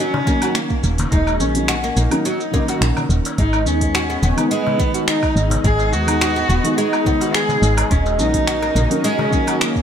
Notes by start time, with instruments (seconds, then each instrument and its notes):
0.00 oud F#3, cello C#4
0.14 darbuka tek, darbuka dum
0.25 felt piano D#3 F#3 A#3, oud A#3, kick, shaker
0.29 felt piano C#4
0.42 oud F#4, open hi-hat, darbuka ka, low woodblock, shaker
0.55 cello A#3, finger snap, open hi-hat, shaker
0.70 kick, shaker
0.83 fm bass D#1, darbuka ka, shaker
0.98 open hi-hat, darbuka tek, darbuka dum, shaker
1.10 fm bass D#1, oud G#3, cello D#4, kick, open hi-hat, darbuka ka, shaker
1.27 darbuka ka, darbuka tek, low woodblock, shaker
1.39 fm bass A#1, felt piano D#3 F#3 A#3 C#4, cello C#4, shaker
1.54 felt piano D#3 F#3 A#3 C#4, open hi-hat, shaker
1.68 oud F#4, finger snap, open hi-hat, shaker
1.84 oud A#3, shaker
1.97 fm bass A#1, oud A#3, cello D#4, darbuka ka, shaker
2.10 felt piano D#3 F#3 A#3 C#4, open hi-hat, low woodblock, shaker
2.25 oud F#3, open hi-hat, shaker
2.40 shaker
2.51 felt piano D#3 F#3 A#3 C#4, oud A#3, kick, darbuka dum, shaker
2.68 oud F#4, open hi-hat, darbuka tek, shaker
2.81 fm bass A#1, finger snap, open hi-hat, shaker
2.97 darbuka tek, darbuka dum, low woodblock, shaker
3.09 fm bass D#1, darbuka ka, shaker
3.25 open hi-hat, darbuka tek, shaker
3.38 fm bass G#1, oud G#3, analog synth pad B3 D#4 G#4 D#5, cello D#4, kick, open hi-hat, shaker
3.53 darbuka tek, low woodblock, shaker
3.65 fm bass D#2, felt piano D#3 G#3 B3 D#4, cello C#4, shaker
3.80 felt piano D#3 G#3 B3 D#4, kick, open hi-hat, shaker
3.95 oud F#4, finger snap, open hi-hat, shaker
4.10 oud B3, shaker
4.23 fm bass D#1, oud B3, darbuka dum, shaker
4.36 felt piano D#3 G#3 B3 D#4, open hi-hat, low woodblock, shaker
4.51 oud G#3, cello B3, open hi-hat, shaker
4.67 darbuka tek, darbuka dum
4.77 felt piano D#3 G#3 B3, oud B3, kick, shaker
4.82 felt piano D#4
4.94 oud F#4, open hi-hat, darbuka ka, shaker
5.08 cello D#4, finger snap, open hi-hat, shaker
5.23 kick, low woodblock, shaker
5.36 fm bass G#1, darbuka ka, shaker
5.50 open hi-hat, darbuka tek, darbuka dum, shaker
5.64 fm bass G#1, oud G#3, cello G#4, kick, open hi-hat, darbuka ka, shaker
5.78 darbuka ka, darbuka tek, shaker
5.92 fm bass D#2, felt piano D#3 G#3 B3 D#4, cello F#4, shaker
6.07 felt piano D#3 G#3 B3 D#4, open hi-hat, low woodblock, shaker
6.21 oud F#4, finger snap, open hi-hat, shaker
6.36 oud B3, shaker
6.49 fm bass D#1, oud B3, shaker
6.64 felt piano D#3 G#3 B3 D#4, open hi-hat, shaker
6.71 cello F#4
6.78 oud G#3, cello D#4, open hi-hat, shaker
6.93 low woodblock, shaker
7.04 felt piano D#3 G#3 B3 D#4, oud B3, kick, darbuka dum, shaker
7.21 oud F#4, open hi-hat, darbuka tek, shaker
7.34 cello G#4, finger snap, open hi-hat, shaker
7.49 darbuka tek, darbuka dum, shaker
7.62 fm bass G#1, darbuka ka, shaker
7.77 open hi-hat, darbuka tek, low woodblock, shaker
7.91 fm bass D#1, oud G#3, cello C#4, analog synth pad C#4 F#4 A#4 D#5, kick, open hi-hat, shaker
8.06 darbuka tek, shaker
8.18 fm bass A#1, felt piano D#3 F#3 A#3 C#4, cello D#4, shaker
8.33 felt piano D#3 F#3 A#3 C#4, kick, open hi-hat, shaker
8.47 oud F#4, finger snap, open hi-hat, shaker
8.62 oud A#3, low woodblock, shaker
8.75 fm bass A#1, oud A#3, darbuka dum, shaker
8.90 felt piano D#3 F#3 A#3 C#4, open hi-hat, shaker
9.04 oud G#3, cello C#4, open hi-hat, shaker
9.19 darbuka tek, darbuka dum
9.30 felt piano D#3 F#3 A#3, oud A#3, kick, shaker
9.35 felt piano C#4
9.47 oud F#4, open hi-hat, darbuka ka, low woodblock, shaker
9.61 cello A#3, finger snap, open hi-hat, shaker
9.76 kick, shaker